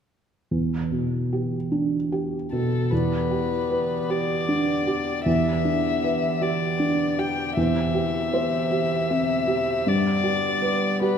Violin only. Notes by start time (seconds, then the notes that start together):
2.52 A4
2.91 B4
4.10 D5
5.27 E5
6.42 D5
7.19 G5
7.59 E5
9.88 D5
11.03 B4